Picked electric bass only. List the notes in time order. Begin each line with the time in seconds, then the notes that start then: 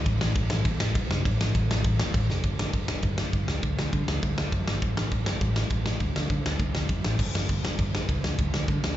0.06 A1
0.21 A1
0.35 A1
0.52 A1
0.65 E2
0.81 A1
0.95 E1
1.10 F#1
1.26 A1
1.40 A1
1.55 A1
1.69 A1
1.85 A1
2.00 E1
2.14 A1
2.29 F#1
2.44 G1
2.58 G1
2.74 G1
2.88 E1
3.03 G1
3.33 G1
3.47 D2
3.63 D2
3.77 D2
3.93 D3
4.07 D2
4.23 D2
4.37 D2
4.52 F#2
4.67 G#1
4.82 A1
4.96 A1
5.12 A1
5.27 G1
5.41 A1
5.70 A1
6.00 D2
6.16 D2
6.30 D3
6.46 D2
6.60 D2
6.75 D2
6.89 F#2
7.04 A1
7.19 G1
7.35 G1
7.49 G1
7.64 E1
7.79 G1
8.09 C#2
8.24 D2
8.39 D2
8.53 D2
8.68 D3
8.83 D2